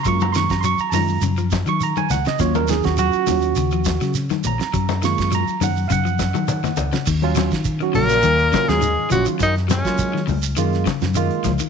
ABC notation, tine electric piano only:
X:1
M:4/4
L:1/16
Q:1/4=103
K:Ebm
V:1 name="Tine electric piano"
[=c'd'] b [c'd'] b [c'd'] b [=ab]2 z3 d' b _a g e | d B A G G8 z2 b2- | b2 d'2 b2 g2 [fg]8 | z [G,DF]2 z2 [G,DG]2 z3 [G,DF]2 z2 [G,DF]2 |
z3 [A,B,F]2 z3 [A,B,F]2 z2 [A,B,F]2 z2 |]
V:2 name="Tine electric piano"
[A,B,F]2 z4 [A,B,F]2 z8 | [G,DF]6 [G,DF]2 z8 | z2 [A,B,F]2 z12 | z16 |
z16 |]